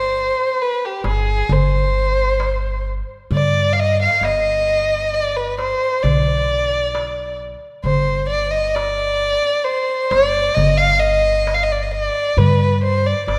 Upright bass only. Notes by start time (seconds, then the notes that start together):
Already playing: G1
1.04 G1
1.49 G1
3.31 G2
4.21 G1
6.04 B1
7.84 G1
10.11 G1
10.57 G1
12.37 G2
13.28 G1